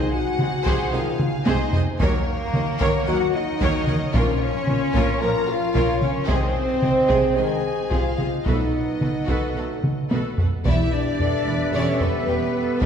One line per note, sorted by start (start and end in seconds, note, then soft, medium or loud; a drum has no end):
0.00 2.00 C4 medium
0.00 0.13 D#4 medium
0.00 4.14 D#4 medium
0.00 0.11 G#4 medium
0.00 2.00 G#4 medium
0.00 0.10 C5 medium
0.00 0.11 C5 medium
0.00 0.11 D#5 medium
0.00 2.00 G#5 medium
0.12 0.92 F#4 loud
0.12 0.91 F#5 medium
0.38 0.47 C2 medium
0.38 0.46 C3 medium
0.38 0.47 G#4 medium
0.38 0.47 C5 medium
0.38 0.49 C5 medium
0.38 0.49 D#5 medium
0.38 taiko mid medium
0.66 0.74 C2 loud
0.66 0.74 C3 loud
0.66 0.91 G#4 loud
0.66 0.91 G#4 medium
0.66 0.91 C5 loud
0.66 taiko medium
0.92 1.01 C2 medium
0.92 1.00 C3 medium
0.92 1.11 D#3 medium
0.92 1.11 G#3 medium
0.92 1.31 F4 loud
0.92 1.01 G#4 medium
0.92 1.00 C5 medium
0.92 1.02 D#5 medium
0.92 1.46 F5 medium
0.92 1.02 G#5 medium
1.19 taiko mid medium
1.46 1.54 C2 loud
1.46 1.55 C3 loud
1.46 1.73 D#4 loud
1.46 1.71 G#4 medium
1.46 1.71 G#4 loud
1.46 1.71 C5 medium
1.46 1.73 D#5 medium
1.46 taiko high medium
1.73 1.81 C2 medium
1.73 1.82 C3 medium
1.73 1.81 G#4 medium
1.73 1.81 C5 medium
1.73 1.82 D#5 medium
1.73 1.82 G#5 medium
1.73 taiko low loud
2.00 2.09 D#2 loud
2.00 2.08 D#3 loud
2.00 2.19 F#3 medium
2.00 3.03 A#3 loud
2.00 2.19 A#3 medium
2.00 6.29 C#4 loud
2.00 3.03 A#4 loud
2.00 6.29 A#4 medium
2.00 2.25 A#4 medium
2.00 2.26 A#4 loud
2.00 2.25 C#5 medium
2.00 2.25 C#5 loud
2.00 4.15 F#5 loud
2.00 taiko loud
2.54 2.63 D#2 medium
2.54 2.62 D#3 medium
2.54 2.62 A#4 medium
2.54 2.62 C#5 medium
2.54 2.62 D#5 medium
2.54 taiko mid medium
2.80 2.89 D#2 loud
2.80 2.89 D#3 loud
2.80 3.05 A#4 loud
2.80 3.05 C#5 medium
2.80 3.06 C#5 loud
2.80 taiko medium
3.07 3.16 D#2 medium
3.07 3.16 D#3 medium
3.07 3.26 F#3 medium
3.07 3.26 A#3 medium
3.07 3.34 F#4 loud
3.07 3.15 A#4 medium
3.07 3.15 C#5 medium
3.07 3.15 D#5 medium
3.07 3.34 F#5 loud
3.07 3.15 F#5 medium
3.34 4.16 D#4 loud
3.34 4.13 D#5 loud
3.60 3.70 D#2 loud
3.60 3.69 D#3 loud
3.60 3.86 A#4 medium
3.60 3.87 A#4 medium
3.60 3.86 C#5 loud
3.60 taiko medium
3.87 3.96 D#2 medium
3.87 3.97 D#3 medium
3.87 3.97 A#4 medium
3.87 3.96 C#5 medium
3.87 3.96 D#5 medium
3.87 3.96 F#5 medium
3.87 taiko mid medium
4.13 4.23 A#1 loud
4.13 4.91 A#2 medium
4.13 4.23 A#2 loud
4.13 4.34 F3 medium
4.13 4.34 A#3 medium
4.13 5.20 C#4 loud
4.13 4.39 F4 loud
4.13 6.29 F4 loud
4.13 4.39 A#4 medium
4.13 4.40 A#4 loud
4.13 5.22 C#5 loud
4.13 4.40 C#5 medium
4.13 6.29 F5 loud
4.13 taiko loud
4.67 4.76 A#1 medium
4.67 4.77 A#2 medium
4.67 4.76 A#4 medium
4.67 4.77 A#4 medium
4.67 4.76 C#5 medium
4.67 4.77 C#5 medium
4.67 taiko mid medium
4.94 5.03 A#1 loud
4.94 5.03 A#2 loud
4.94 5.20 F4 medium
4.94 5.20 A#4 medium
4.94 5.20 A#4 loud
4.94 5.20 C#5 loud
4.94 taiko medium
5.21 5.29 A#1 medium
5.21 5.29 A#2 medium
5.21 5.41 F3 medium
5.21 5.41 A#3 medium
5.21 5.30 A#4 medium
5.21 5.49 A#4 loud
5.21 5.29 C#5 medium
5.21 5.30 C#5 medium
5.21 5.29 F5 medium
5.21 5.49 A#5 loud
5.49 6.02 F4 loud
5.49 6.02 F5 medium
5.74 5.83 A#1 medium
5.74 5.82 A#2 loud
5.74 6.00 F4 medium
5.74 6.00 A#4 medium
5.74 6.00 C#5 medium
5.74 taiko medium
6.01 6.10 A#1 medium
6.01 6.09 A#2 medium
6.01 6.29 C#4 loud
6.01 6.10 A#4 medium
6.01 6.09 C#5 medium
6.01 6.10 C#5 medium
6.01 6.29 C#5 medium
6.01 6.09 F5 medium
6.01 taiko mid medium
6.27 6.37 C2 medium
6.27 6.37 C3 loud
6.27 6.47 D#3 medium
6.27 6.47 G#3 medium
6.27 7.38 C4 loud
6.27 8.46 D#4 loud
6.27 6.53 G#4 medium
6.27 6.54 G#4 loud
6.27 8.45 G#4 loud
6.27 6.53 C5 medium
6.27 8.46 C5 loud
6.27 7.37 C5 loud
6.27 8.45 D#5 loud
6.27 taiko loud
6.82 6.91 C2 medium
6.82 6.91 C3 medium
6.82 6.90 G#4 medium
6.82 6.91 C5 medium
6.82 6.91 D#5 medium
6.82 taiko mid medium
7.08 7.18 C2 medium
7.08 7.18 C3 loud
7.08 7.33 G#4 medium
7.08 7.35 G#4 medium
7.08 7.35 C5 medium
7.08 taiko medium
7.35 7.44 C2 medium
7.35 7.45 C3 medium
7.35 7.56 D#3 medium
7.35 7.56 G#3 medium
7.35 7.43 G#4 medium
7.35 7.91 G#4 loud
7.35 7.45 D#5 medium
7.35 7.45 G#5 medium
7.35 7.90 G#5 medium
7.89 7.98 C2 medium
7.89 7.99 C3 medium
7.89 8.46 F4 loud
7.89 8.16 G#4 medium
7.89 8.16 C5 medium
7.89 8.46 F5 medium
7.89 taiko medium
8.17 8.26 C2 medium
8.17 8.27 C3 medium
8.17 8.27 G#4 medium
8.17 8.26 D#5 medium
8.17 8.25 G#5 medium
8.17 taiko mid medium
8.45 8.54 B1 medium
8.45 8.55 B2 medium
8.45 8.65 F#3 medium
8.45 8.65 A3 medium
8.45 10.38 B3 medium
8.45 10.11 D#4 medium
8.45 8.72 F#4 medium
8.45 10.38 A4 medium
8.45 8.71 A4 medium
8.45 8.71 B4 medium
8.45 8.72 B4 medium
8.45 10.38 B4 medium
8.45 10.11 D#5 medium
8.45 10.38 F#5 medium
8.45 taiko loud
9.00 9.08 B1 medium
9.00 9.10 B2 medium
9.00 9.09 A4 medium
9.00 9.09 A4 soft
9.00 9.09 B4 medium
9.00 9.08 D#5 soft
9.00 taiko mid medium
9.27 9.36 B1 medium
9.27 9.37 B2 medium
9.27 9.53 F#4 medium
9.27 9.54 A4 medium
9.27 9.53 B4 medium
9.27 9.54 B4 medium
9.27 taiko medium
9.55 9.63 B1 medium
9.55 9.63 B2 medium
9.55 9.74 F#3 medium
9.55 9.75 A3 medium
9.55 9.64 A4 medium
9.55 9.64 B4 medium
9.55 9.65 B4 medium
9.55 9.64 F#5 medium
9.84 taiko mid medium
10.10 10.18 B1 medium
10.10 10.19 B2 medium
10.10 10.36 F#4 medium
10.10 10.36 A4 medium
10.10 10.36 B4 medium
10.10 taiko high medium
10.38 10.46 B1 medium
10.38 10.47 B2 medium
10.38 10.48 A4 medium
10.38 10.47 B4 medium
10.38 10.48 B4 medium
10.38 10.46 F#5 medium
10.38 taiko low loud
10.65 10.73 E1 medium
10.65 10.74 E2 medium
10.65 12.78 G3 medium
10.65 12.86 B3 medium
10.65 10.91 E4 loud
10.65 10.91 E4 medium
10.65 12.78 G4 medium
10.65 11.17 G4 medium
10.65 12.86 B4 medium
10.65 10.91 D5 medium
10.65 12.78 E5 medium
10.65 10.94 E5 medium
10.65 10.91 E5 medium
10.65 taiko loud
10.92 11.72 D4 loud
10.92 11.74 D5 medium
11.19 11.27 E1 medium
11.19 11.28 E2 medium
11.19 11.47 A4 medium
11.19 11.29 B4 medium
11.19 11.29 G5 medium
11.19 taiko low medium
11.47 11.55 E1 medium
11.47 11.56 E2 medium
11.47 11.55 G4 medium
11.47 11.74 B4 medium
11.47 11.55 E5 medium
11.73 11.81 E1 medium
11.73 11.82 E2 medium
11.73 12.02 C#4 loud
11.73 11.99 E4 medium
11.73 12.28 A4 medium
11.73 12.00 C#5 medium
11.73 12.03 C#5 medium
11.73 11.99 D5 loud
12.00 12.08 E1 medium
12.00 12.09 E2 medium
12.00 12.82 B3 loud
12.00 12.09 G4 medium
12.00 12.83 B4 medium
12.00 12.82 B4 medium
12.00 12.09 E5 medium
12.00 taiko low medium
12.27 12.35 E1 medium
12.27 12.37 E2 medium
12.27 12.55 G4 medium
12.27 12.36 B4 medium
12.27 12.36 G5 medium
12.55 12.81 A4 medium
12.81 12.86 B1 loud
12.81 12.86 F#3 loud
12.81 12.86 D4 medium
12.81 12.86 D4 loud
12.81 12.86 F#4 loud
12.81 12.86 B4 medium
12.81 12.86 D5 loud
12.81 12.86 F#5 loud
12.81 taiko loud